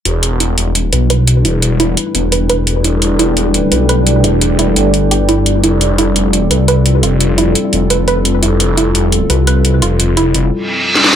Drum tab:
HH |x-x-x-x-x-x-x-x-|x-x-x-x-x-x-x-x-|x-x-x-x-x-x-x-x-|x-x-x-x-x-x-x-x-|
SD |----------------|----------------|----------------|----------------|

HH |x-x-x-x-x-x-x-x-|x-x-x-x-x-x-x-x-|x-x-x-x-x-x-x-x-|x-x-x-x---------|
SD |----------------|----------------|----------------|-------------oo-|